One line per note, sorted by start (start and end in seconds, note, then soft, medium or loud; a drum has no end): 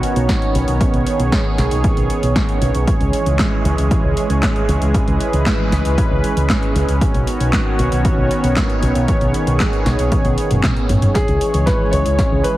0.00 2.84 D#3 medium
0.00 2.84 B3 medium
0.00 2.84 C#4 medium
0.00 0.79 F#4 medium
0.00 4.91 C#5 medium
0.00 closed hi-hat medium
0.16 0.26 B1 medium
0.16 closed hi-hat medium
0.29 kick loud
0.29 snare loud
0.29 closed hi-hat medium
0.42 closed hi-hat soft
0.55 0.65 B1 medium
0.55 closed hi-hat medium
0.68 0.78 B1 medium
0.68 closed hi-hat soft
0.81 2.86 G#4 medium
0.81 kick loud
0.81 closed hi-hat medium
0.94 1.04 B1 medium
0.94 closed hi-hat soft
1.07 closed hi-hat medium
1.19 1.29 B1 medium
1.19 closed hi-hat soft
1.32 kick loud
1.32 snare loud
1.32 closed hi-hat medium
1.58 1.68 B1 medium
1.58 snare medium
1.58 closed hi-hat medium
1.71 1.81 B1 medium
1.71 closed hi-hat soft
1.84 kick loud
1.84 closed hi-hat medium
1.97 2.07 B1 medium
1.97 closed hi-hat soft
2.10 closed hi-hat medium
2.23 2.33 B1 medium
2.23 closed hi-hat soft
2.36 kick loud
2.36 snare loud
2.36 closed hi-hat medium
2.49 closed hi-hat soft
2.62 2.72 B1 medium
2.62 closed hi-hat medium
2.75 2.85 B1 medium
2.75 closed hi-hat soft
2.87 6.97 E3 medium
2.87 6.97 G#3 medium
2.87 11.11 C#4 medium
2.87 6.97 G#4 medium
2.87 kick loud
2.87 closed hi-hat medium
3.00 3.10 C#2 medium
3.00 closed hi-hat soft
3.13 closed hi-hat medium
3.26 3.36 C#2 medium
3.26 closed hi-hat soft
3.39 kick loud
3.39 snare loud
3.39 clap medium
3.39 closed hi-hat medium
3.65 3.75 C#2 medium
3.65 closed hi-hat medium
3.78 3.88 C#2 medium
3.78 closed hi-hat soft
3.91 kick loud
3.91 closed hi-hat medium
4.04 4.14 C#2 medium
4.17 closed hi-hat medium
4.30 4.40 C#2 medium
4.30 closed hi-hat medium
4.43 kick loud
4.43 snare loud
4.43 clap medium
4.43 closed hi-hat medium
4.56 closed hi-hat soft
4.69 4.79 C#2 medium
4.69 closed hi-hat medium
4.82 4.91 C#2 medium
4.82 closed hi-hat soft
4.94 6.99 B4 loud
4.94 kick loud
4.94 closed hi-hat medium
5.08 5.17 C#2 medium
5.08 closed hi-hat soft
5.20 closed hi-hat medium
5.33 5.43 C#2 medium
5.33 closed hi-hat medium
5.46 kick loud
5.46 snare loud
5.46 clap medium
5.46 closed hi-hat medium
5.72 5.82 C#2 medium
5.72 snare medium
5.72 closed hi-hat medium
5.85 5.95 C#2 medium
5.85 closed hi-hat medium
5.98 kick loud
5.98 closed hi-hat medium
6.11 6.21 C#2 medium
6.24 closed hi-hat medium
6.37 6.47 C#2 medium
6.37 closed hi-hat medium
6.50 kick loud
6.50 snare loud
6.50 clap medium
6.50 closed hi-hat medium
6.63 closed hi-hat soft
6.75 6.85 C#2 loud
6.75 closed hi-hat medium
6.88 6.98 C#2 medium
6.88 closed hi-hat medium
7.01 11.11 D#3 medium
7.01 11.11 B3 medium
7.01 9.06 F#4 medium
7.01 11.11 C#5 loud
7.01 kick loud
7.01 closed hi-hat medium
7.14 7.24 B1 medium
7.14 closed hi-hat soft
7.27 closed hi-hat medium
7.40 7.50 B1 medium
7.40 closed hi-hat medium
7.53 kick loud
7.53 snare loud
7.53 clap medium
7.53 closed hi-hat medium
7.79 7.89 B1 medium
7.79 closed hi-hat medium
7.92 8.02 B1 medium
7.92 closed hi-hat medium
8.05 kick loud
8.05 closed hi-hat medium
8.18 8.28 B1 medium
8.31 closed hi-hat medium
8.44 8.54 B1 medium
8.44 closed hi-hat medium
8.57 kick loud
8.57 snare loud
8.57 clap medium
8.57 closed hi-hat medium
8.70 closed hi-hat soft
8.83 8.92 B1 medium
8.83 closed hi-hat medium
8.95 9.05 B1 medium
8.95 closed hi-hat medium
9.08 11.13 G#4 medium
9.08 kick loud
9.08 closed hi-hat medium
9.21 9.31 B1 medium
9.21 closed hi-hat soft
9.34 closed hi-hat medium
9.47 9.57 B1 medium
9.47 closed hi-hat medium
9.60 kick loud
9.60 snare loud
9.60 clap medium
9.60 closed hi-hat medium
9.73 closed hi-hat soft
9.86 9.96 B1 medium
9.86 snare medium
9.86 closed hi-hat medium
9.99 10.09 B1 medium
9.99 closed hi-hat medium
10.12 kick loud
10.12 closed hi-hat medium
10.12 high tom medium
10.25 10.35 B1 medium
10.25 closed hi-hat soft
10.25 high tom medium
10.38 closed hi-hat medium
10.51 10.60 F#1 medium
10.51 closed hi-hat medium
10.51 mid tom medium
10.63 kick loud
10.63 snare loud
10.63 clap medium
10.63 closed hi-hat medium
10.63 mid tom medium
10.77 closed hi-hat soft
10.89 10.99 A1 medium
10.89 closed hi-hat medium
10.89 mid tom medium
11.02 11.12 F#1 medium
11.02 closed hi-hat medium
11.02 mid tom medium
11.14 12.57 E3 medium
11.14 12.57 G#3 medium
11.14 12.57 C#4 medium
11.14 11.63 G#4 medium
11.14 12.57 G#4 medium
11.14 12.57 C#5 loud
11.14 kick loud
11.14 snare soft
11.14 closed hi-hat medium
11.28 11.38 C#2 medium
11.28 closed hi-hat soft
11.41 closed hi-hat medium
11.54 11.64 C#2 medium
11.54 closed hi-hat medium
11.66 11.93 B4 medium
11.66 kick loud
11.66 snare medium
11.66 closed hi-hat medium
11.92 12.03 C#2 medium
11.92 12.45 C#5 loud
11.92 closed hi-hat medium
12.06 12.16 C#2 medium
12.06 closed hi-hat medium
12.19 kick loud
12.19 snare medium
12.19 closed hi-hat medium
12.32 12.42 C#2 medium
12.44 12.57 B4 medium
12.44 closed hi-hat medium